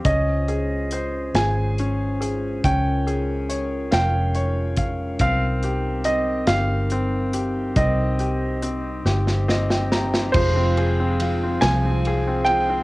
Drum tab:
CC |------------|------------|------------|------------|
RD |------------|------------|------------|------------|
HH |x-x-x-x-x-x-|x-x-x-x-x-x-|x-x-x-x-x-x-|x-x-x-------|
SD |------o-----|------o-----|------o-----|------oooooo|
BD |o-----------|o---------o-|o-----------|o-----------|

CC |x-----------|
RD |--x-x-x-x-x-|
HH |------------|
SD |------o-----|
BD |o-----------|